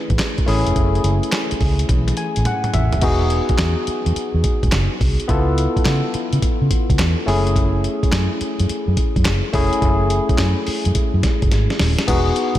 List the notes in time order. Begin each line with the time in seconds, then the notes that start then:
Already playing: A3 C#4 E4 G#4 B4
0.10 A1, kick, closed hi-hat
0.19 snare, clap, closed hi-hat
0.38 kick, closed hi-hat
0.46 A1 A3 C#4 E4 G#4, open hi-hat
0.67 F1, closed hi-hat
0.76 F#1, kick, closed hi-hat
0.95 closed hi-hat
1.04 F#1, closed hi-hat
1.23 closed hi-hat
1.32 snare, clap, closed hi-hat
1.51 muted fingered electric bass stroke, closed hi-hat
1.61 C#2, kick, open hi-hat
1.79 closed hi-hat
1.89 B1, kick, closed hi-hat, high tom
2.08 closed hi-hat, high tom
2.17 G#5, closed hi-hat
2.36 A1, closed hi-hat
2.45 F#5, closed hi-hat, mid tom
2.64 closed hi-hat, mid tom
2.74 A1 E5, closed hi-hat, floor tom
2.92 D#1, closed hi-hat, floor tom
3.01 E1 B3 D#4 F#4 G#4, kick, closed hi-hat, crash
3.30 closed hi-hat
3.49 kick, closed hi-hat
3.58 E2, snare, clap, closed hi-hat
3.87 muted fingered electric bass stroke, closed hi-hat
4.06 E2, closed hi-hat
4.16 muted fingered electric bass stroke, closed hi-hat
4.34 E2
4.44 kick, closed hi-hat
4.63 E1, kick, closed hi-hat
4.72 F#1, snare, clap, closed hi-hat
5.01 C2, kick, open hi-hat
5.20 closed hi-hat
5.28 C#2 B3 E4 F4 A4, kick, closed hi-hat
5.58 closed hi-hat
5.77 kick, closed hi-hat
5.85 C#3, snare, clap, closed hi-hat
6.14 muted fingered electric bass stroke, closed hi-hat
6.33 C#3, closed hi-hat
6.42 muted fingered electric bass stroke, kick, closed hi-hat
6.62 C#3
6.71 kick, closed hi-hat
6.90 C#2, kick, closed hi-hat
6.99 E2, snare, clap, closed hi-hat
7.26 F#1 A3 C#4 E4 G#4, open hi-hat
7.47 closed hi-hat
7.56 kick, closed hi-hat
7.84 closed hi-hat
8.03 kick, closed hi-hat
8.12 F#2, snare, clap, closed hi-hat
8.41 muted fingered electric bass stroke, closed hi-hat
8.60 F#2, closed hi-hat
8.69 muted fingered electric bass stroke, closed hi-hat
8.88 F#2
8.97 kick, closed hi-hat
9.16 F#2, kick, closed hi-hat
9.25 F#1, snare, clap, closed hi-hat
9.53 F1 A3 C#4 E4 G#4, kick, open hi-hat
9.73 closed hi-hat
9.82 F#1, kick, closed hi-hat
10.10 closed hi-hat
10.29 kick, closed hi-hat
10.38 F#2, snare, clap, closed hi-hat
10.67 muted fingered electric bass stroke, open hi-hat
10.85 F#2, closed hi-hat
10.95 muted fingered electric bass stroke, kick, closed hi-hat
11.14 F#2
11.23 kick, snare, closed hi-hat
11.42 F#1, kick, closed hi-hat
11.51 G#1, snare, closed hi-hat
11.70 snare
11.79 D#1, snare, open hi-hat
11.98 snare, closed hi-hat
12.07 E1 B3 D#4 F#4 G#4, kick, closed hi-hat, crash, tambourine
12.36 closed hi-hat
12.55 F#1, kick, closed hi-hat